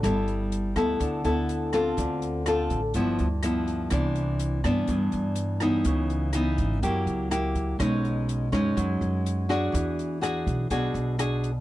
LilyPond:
<<
  \new Staff \with { instrumentName = "Nylon-string guitar" } { \time 4/4 \key b \phrygian \tempo 4 = 124 << { <b e' a'>4. <b e' a'>4 <b e' a'>4 <c' f' a'>8~ | <c' f' a'>4 <c' f' a'>8 r8 <f b e'>8 r8 <f b e'>4 | <e b d'>4. <e b d'>2 <e b ees'>8~ | <e b ees'>4 <e b dis'>4 <ais e' g'>4 <ais e' g'>4 |
<gis cis' dis'>4. <gis cis' dis'>2 <d' fis' gis'>8~ | <d' fis' gis'>4 <d' fis' gis'>4 <d' fis' gis'>4 <d' fis' gis'>8 r8 | } \\ { g2 d2 | d2 g,2 | c2 g,2 | cis2 fis2 |
b,2 fis2 | e2 b,2 | } >> }
  \new Staff \with { instrumentName = "Upright bass" } { \clef bass \time 4/4 \key b \phrygian g,,4. d,8 d,8 d,4. | d,4. a,,8 g,,8 d,4. | c,4. g,8 g,8 g,4. | cis,4. gis,,8 fis,8 cis,4. |
b,,4. fis,8 fis,8 fis,4. | e,4. b,,8 b,,8 b,,4. | }
  \new DrumStaff \with { instrumentName = "Drums" } \drummode { \time 4/4 <hh bd ss>8 hh8 hh8 <hh bd ss>8 <hh bd>8 hh8 hh8 <hh ss>8 | <hh bd>8 hh8 <hh ss>8 <hh bd>8 <hh bd>8 hh8 <hh ss>8 hh8 | <hh bd ss>8 hh8 hh8 <hh bd ss>8 <hh bd>8 hh8 hh8 <hh ss>8 | <hh bd>8 hh8 <hh ss>8 <hh bd>8 <hh bd>8 hh8 <hh ss>8 <hh bd>8 |
<hh bd ss>8 hh8 hh8 <hh bd ss>8 <hh bd>8 hh8 hh8 <hh ss>8 | <hh bd>8 hh8 <hh ss>8 <hh bd>8 <hh bd>8 hh8 <hh ss>8 hh8 | }
>>